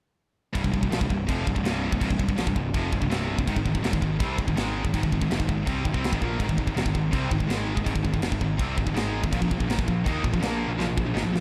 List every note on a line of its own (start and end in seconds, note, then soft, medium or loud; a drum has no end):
0.55 0.63 C1 medium
0.55 0.63 C2 medium
0.55 0.64 G2 loud
0.55 kick loud
0.55 crash medium
0.64 0.72 C1 medium
0.64 0.72 C2 medium
0.64 0.73 G2 medium
0.64 kick medium
0.73 0.82 C1 medium
0.73 0.81 C2 medium
0.73 0.82 G2 medium
0.73 kick medium
0.83 0.90 C1 medium
0.83 0.92 C2 medium
0.83 0.92 G2 medium
0.83 kick medium
0.91 1.00 A#1 medium
0.91 1.01 A#2 loud
0.91 1.01 F3 medium
0.91 snare loud
0.91 crash medium
1.01 1.09 C1 medium
1.01 1.09 C2 medium
1.01 1.09 G2 medium
1.01 kick medium
1.10 1.27 C1 medium
1.10 1.25 C2 medium
1.10 1.25 G2 medium
1.10 kick medium
1.28 1.45 F1 medium
1.28 1.46 F2 medium
1.28 1.46 C3 loud
1.28 1.47 F3 loud
1.28 kick medium
1.28 crash medium
1.46 1.55 C1 medium
1.46 1.54 C2 medium
1.46 1.55 G2 medium
1.46 kick medium
1.55 1.63 C1 medium
1.55 1.64 C2 medium
1.55 1.65 G2 medium
1.55 kick medium
1.64 1.90 C1 medium
1.64 1.91 C2 medium
1.64 1.91 G2 loud
1.64 1.93 C3 loud
1.64 snare loud
1.64 crash medium
1.92 2.00 C1 medium
1.92 1.99 C2 medium
1.92 2.00 G2 medium
1.92 kick medium
2.00 2.09 C1 loud
2.00 2.09 C2 loud
2.00 2.10 G2 loud
2.00 kick medium
2.00 crash medium
2.10 2.19 C1 medium
2.10 2.17 C2 medium
2.10 2.18 G2 medium
2.10 kick loud
2.19 2.28 C1 medium
2.19 2.27 C2 medium
2.19 2.28 G2 medium
2.19 kick medium
2.28 2.37 C1 medium
2.28 2.36 C2 medium
2.28 2.37 G2 medium
2.28 kick medium
2.36 2.46 A#1 medium
2.36 2.46 A#2 medium
2.36 2.46 F3 loud
2.36 snare loud
2.36 crash medium
2.46 2.55 C1 medium
2.46 2.54 C2 medium
2.46 2.55 G2 medium
2.46 kick medium
2.55 2.73 C1 medium
2.55 2.70 C2 medium
2.55 2.71 G2 medium
2.55 kick medium
2.74 2.91 F1 medium
2.74 2.92 F2 medium
2.74 2.92 C3 loud
2.74 2.92 F3 loud
2.74 kick loud
2.74 crash medium
2.93 3.01 C1 medium
2.93 3.00 C2 medium
2.93 3.00 G2 medium
2.93 kick medium
3.01 3.09 C1 medium
3.01 3.09 C2 medium
3.01 3.09 G2 medium
3.01 kick medium
3.10 3.36 C1 medium
3.10 3.37 C2 loud
3.10 3.38 G2 medium
3.10 3.38 C3 loud
3.10 snare loud
3.10 crash medium
3.38 3.47 C1 medium
3.38 3.47 C2 medium
3.38 3.48 G2 medium
3.38 kick medium
3.47 3.56 G#1 loud
3.47 3.56 G#2 medium
3.47 3.56 D#3 loud
3.47 kick loud
3.47 crash medium
3.56 3.65 G#1 medium
3.56 3.65 G#2 medium
3.56 3.65 D#3 medium
3.56 kick medium
3.65 3.74 G#1 medium
3.65 3.74 G#2 medium
3.65 3.74 D#3 medium
3.65 kick medium
3.75 3.83 G#1 medium
3.75 3.82 G#2 medium
3.75 3.82 D#3 medium
3.75 kick medium
3.82 3.92 F1 medium
3.82 3.91 F2 medium
3.82 3.92 C3 loud
3.82 snare loud
3.82 crash medium
3.91 4.01 G#1 medium
3.91 4.00 G#2 medium
3.91 4.00 D#3 medium
3.91 kick loud
4.01 4.19 G#1 medium
4.01 4.16 G#2 medium
4.01 4.17 D#3 medium
4.01 kick medium
4.20 4.37 C2 medium
4.20 4.38 C3 loud
4.20 4.38 G3 loud
4.20 4.38 C4 loud
4.20 kick loud
4.20 crash medium
4.38 4.47 G#1 medium
4.38 4.46 G#2 medium
4.38 4.47 D#3 medium
4.38 kick medium
4.47 4.56 G#1 medium
4.47 4.55 G#2 medium
4.47 4.56 D#3 medium
4.47 kick medium
4.56 4.83 G#1 loud
4.56 4.84 G#2 medium
4.56 4.84 D#3 loud
4.56 4.84 G#3 loud
4.56 snare loud
4.56 crash medium
4.85 4.93 G#1 medium
4.85 4.92 G#2 medium
4.85 4.93 D#3 medium
4.85 kick medium
4.93 5.02 G#1 loud
4.93 5.02 G#2 medium
4.93 5.03 D#3 loud
4.93 kick loud
4.93 crash medium
5.03 5.12 G#1 medium
5.03 5.12 G#2 medium
5.03 5.13 D#3 medium
5.03 kick medium
5.12 5.21 G#1 medium
5.12 5.20 G#2 medium
5.12 5.21 D#3 medium
5.12 kick medium
5.21 5.30 G#1 medium
5.21 5.30 G#2 medium
5.21 5.30 D#3 medium
5.21 kick medium
5.30 5.39 F1 loud
5.30 5.39 F2 medium
5.30 5.39 C3 medium
5.30 snare loud
5.30 crash medium
5.39 5.48 G#1 medium
5.39 5.47 G#2 medium
5.39 5.48 D#3 medium
5.39 kick medium
5.48 5.66 G#1 medium
5.48 5.63 G#2 medium
5.48 5.63 D#3 medium
5.48 kick medium
5.66 5.84 C2 medium
5.66 5.84 C3 medium
5.66 5.85 G3 loud
5.66 5.85 C4 loud
5.66 kick loud
5.66 crash medium
5.85 5.94 G#1 medium
5.85 5.95 G#2 medium
5.85 5.94 D#3 medium
5.85 kick medium
5.94 6.11 C2 loud
5.94 6.12 C3 loud
5.94 6.12 G3 loud
5.94 6.12 C4 loud
5.94 kick medium
6.04 snare loud
6.04 crash medium
6.12 6.21 G#1 medium
6.12 6.21 G#2 medium
6.12 6.21 D#3 loud
6.12 kick loud
6.21 6.38 A#1 medium
6.21 6.40 A#2 loud
6.21 6.40 F3 medium
6.21 6.40 A#3 loud
6.21 kick medium
6.40 6.48 G#1 medium
6.40 6.49 G#2 medium
6.40 6.49 D#3 loud
6.40 kick loud
6.40 crash medium
6.47 6.57 G#1 medium
6.47 6.58 G#2 medium
6.47 6.56 D#3 medium
6.47 kick medium
6.51 6.58 D#3 medium
6.57 6.66 G#1 medium
6.57 6.66 G#2 medium
6.57 6.67 D#3 medium
6.57 kick medium
6.67 6.75 G#1 medium
6.67 6.77 G#2 medium
6.67 6.77 D#3 medium
6.67 kick medium
6.75 6.84 F1 medium
6.75 6.86 F2 loud
6.75 6.86 C3 loud
6.75 snare loud
6.75 crash medium
6.85 6.94 G#1 medium
6.85 6.93 G#2 medium
6.85 6.94 D#3 medium
6.85 kick medium
6.94 7.12 G#1 medium
6.94 7.09 G#2 medium
6.94 7.10 D#3 medium
6.94 kick medium
7.12 7.30 C2 medium
7.12 7.30 C3 medium
7.12 7.31 G3 loud
7.12 7.31 C4 loud
7.12 kick medium
7.12 crash medium
7.31 7.39 G#1 medium
7.31 7.39 G#2 medium
7.31 7.40 D#3 medium
7.31 kick medium
7.40 7.48 G#1 medium
7.40 7.48 G#2 medium
7.40 7.48 D#3 medium
7.40 kick medium
7.49 7.75 G#1 loud
7.49 7.75 G#2 medium
7.49 7.75 D#3 loud
7.49 7.77 G#3 medium
7.49 snare loud
7.49 crash medium
7.76 7.85 G#1 medium
7.76 7.83 G#2 medium
7.76 7.84 D#3 medium
7.76 kick medium
7.85 7.94 G#1 medium
7.85 7.93 G#2 loud
7.85 7.93 D#3 loud
7.85 kick loud
7.85 crash medium
7.94 8.04 G#1 medium
7.94 8.01 G#2 medium
7.94 8.02 D#3 medium
7.94 kick medium
8.03 8.13 G#1 medium
8.03 8.12 G#2 medium
8.03 8.12 D#3 medium
8.03 kick medium
8.13 8.21 G#1 medium
8.13 8.22 G#2 medium
8.13 8.23 D#3 medium
8.13 kick medium
8.21 8.31 F1 medium
8.21 8.31 F2 medium
8.21 8.32 C3 loud
8.21 snare loud
8.21 crash medium
8.32 8.40 G#1 medium
8.32 8.40 G#2 medium
8.32 8.40 D#3 medium
8.32 kick medium
8.41 8.58 G#1 medium
8.41 8.56 G#2 medium
8.41 8.56 D#3 medium
8.41 kick medium
8.58 8.76 C2 medium
8.58 8.76 C3 loud
8.58 8.77 G3 loud
8.58 8.77 C4 loud
8.58 kick loud
8.58 crash medium
8.76 8.86 G#1 medium
8.76 8.85 G#2 medium
8.76 8.85 D#3 medium
8.76 kick medium
8.86 8.94 G#1 medium
8.86 8.93 G#2 medium
8.86 8.94 D#3 medium
8.86 kick medium
8.94 9.21 G#1 loud
8.94 9.22 G#2 medium
8.94 9.22 D#3 loud
8.94 9.23 G#3 loud
8.94 snare loud
8.94 crash medium
9.23 9.31 G#1 medium
9.23 9.32 G#2 medium
9.23 9.33 D#3 medium
9.23 kick medium
9.32 9.41 A#1 medium
9.32 9.40 A#2 loud
9.32 9.40 F3 loud
9.32 kick loud
9.32 crash medium
9.41 9.50 A#1 medium
9.41 9.49 A#2 medium
9.41 9.50 F3 medium
9.41 kick medium
9.51 9.59 A#1 medium
9.51 9.59 A#2 medium
9.51 9.59 F3 medium
9.51 kick medium
9.60 9.68 A#1 medium
9.60 9.69 A#2 medium
9.60 9.69 F3 medium
9.60 kick medium
9.68 9.77 G#1 medium
9.68 9.78 G#2 loud
9.68 9.78 D#3 loud
9.68 snare loud
9.68 crash medium
9.78 9.87 A#1 medium
9.78 9.87 A#2 medium
9.78 9.87 F3 medium
9.78 kick loud
9.88 10.05 A#1 medium
9.88 10.02 A#2 medium
9.88 10.02 F3 medium
9.88 kick medium
10.06 10.23 D#2 medium
10.06 10.23 D#3 medium
10.06 10.24 A#3 loud
10.06 10.25 D#4 loud
10.06 kick loud
10.06 crash medium
10.24 10.33 A#1 medium
10.24 10.31 A#2 medium
10.24 10.32 F3 medium
10.24 kick medium
10.33 10.41 A#1 loud
10.33 10.40 A#2 medium
10.33 10.41 F3 medium
10.33 kick medium
10.41 10.68 A#1 loud
10.41 10.68 A#2 loud
10.41 10.68 F3 loud
10.41 10.70 A#3 loud
10.41 snare loud
10.41 crash medium
10.68 10.78 A#1 medium
10.68 10.76 A#2 medium
10.68 10.78 F3 medium
10.78 10.87 A#1 medium
10.78 10.86 A#2 loud
10.78 10.87 F3 loud
10.78 snare medium
10.87 10.96 A#1 medium
10.87 10.96 A#2 medium
10.87 10.96 F3 medium
10.97 11.05 A#1 medium
10.97 11.05 A#2 medium
10.97 11.05 F3 medium
10.97 kick medium
11.05 11.15 A#1 medium
11.05 11.14 A#2 medium
11.05 11.14 F3 medium
11.14 11.24 G#1 medium
11.14 11.23 G#2 medium
11.14 11.23 D#3 loud
11.14 snare medium
11.23 11.33 A#1 medium
11.23 11.31 A#2 medium
11.23 11.31 F3 medium
11.32 11.40 A#1 medium
11.32 11.40 A#2 medium
11.32 11.40 F3 medium
11.32 snare medium